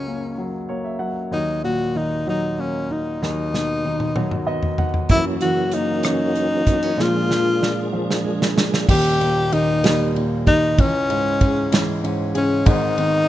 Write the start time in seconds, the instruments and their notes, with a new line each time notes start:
Already playing: upright piano C#2 C#3 F#3 A#3, tenor saxophone C#4
0.07 upright piano A#3
0.38 upright piano F#3
0.69 upright piano A#3 C#5
0.84 upright piano E5
0.99 upright piano F#3 F#5
1.31 upright piano D#2, steel-string acoustic guitar F#3, tenor saxophone D#4
1.64 upright piano A#2, steel-string acoustic guitar F#3, tenor saxophone F#4
1.95 upright piano D#3, steel-string acoustic guitar D#4, tenor saxophone D#4
2.27 upright piano F#3, steel-string acoustic guitar F#3, tenor saxophone D#4
2.59 steel-string acoustic guitar A#3, tenor saxophone C#4
2.90 steel-string acoustic guitar D#4, tenor saxophone D#4
3.22 upright piano D#2, steel-string acoustic guitar F#3, tenor saxophone D#4, snare
3.53 upright piano B2, steel-string acoustic guitar F#3, snare
3.85 upright piano D#3, steel-string acoustic guitar D#4
4.00 mid tom
4.16 upright piano F#3, steel-string acoustic guitar F#3, mid tom
4.31 mid tom
4.47 steel-string acoustic guitar B3, upright piano D#5
4.63 floor tom
4.78 steel-string acoustic guitar D#4, upright piano F#5, floor tom
4.94 floor tom
5.09 upright piano F#2, steel-string acoustic guitar E3, tonewheel organ E3 F#3 A#3 C#4 F#4, tenor saxophone E4, kick, closed hi-hat
5.41 upright piano C#3, steel-string acoustic guitar E3, tenor saxophone F#4, closed hi-hat
5.72 upright piano A#3, steel-string acoustic guitar C#4, tenor saxophone D#4, closed hi-hat
6.03 steel-string acoustic guitar E3, upright piano C#4, tenor saxophone D#4, cross-stick, closed hi-hat
6.35 steel-string acoustic guitar A#3, closed hi-hat
6.67 steel-string acoustic guitar B3, kick, closed hi-hat
6.83 steel-string acoustic guitar C#4
6.97 upright piano A#2, steel-string acoustic guitar F3, tonewheel organ F3 G#3 A#3 D4 G#4, tenor saxophone F4, snare
7.30 upright piano F3, steel-string acoustic guitar F3, snare
7.62 steel-string acoustic guitar D4, upright piano D4, snare
7.93 upright piano F3, steel-string acoustic guitar F3
8.11 snare
8.25 steel-string acoustic guitar G#3
8.42 snare
8.57 steel-string acoustic guitar D4, snare
8.74 snare
8.88 upright piano D#1 D#2, steel-string acoustic guitar D#3, tenor saxophone G4, kick, crash
9.20 upright piano A#2, steel-string acoustic guitar A#3, ride
9.52 upright piano D#3, tenor saxophone D#4, steel-string acoustic guitar G4, ride
9.84 upright piano G3, steel-string acoustic guitar A#3, snare, ride
10.15 upright piano A#2, steel-string acoustic guitar D#4, ride
10.47 upright piano D#3, tenor saxophone D#4, steel-string acoustic guitar G4, kick, ride
10.78 upright piano C#2, steel-string acoustic guitar E3, tenor saxophone C#4, kick, ride
11.09 upright piano G#2, steel-string acoustic guitar G#3, ride
11.41 upright piano C#3, steel-string acoustic guitar G#4, kick, ride
11.72 upright piano E3, steel-string acoustic guitar G#3, snare, ride
12.04 upright piano G#2, steel-string acoustic guitar C#4, ride
12.35 upright piano C#3, tenor saxophone C#4, steel-string acoustic guitar G#4, ride
12.66 upright piano G#1 G#2, steel-string acoustic guitar D#3, tenor saxophone D#4, kick, ride
12.98 upright piano D#3, steel-string acoustic guitar B3, ride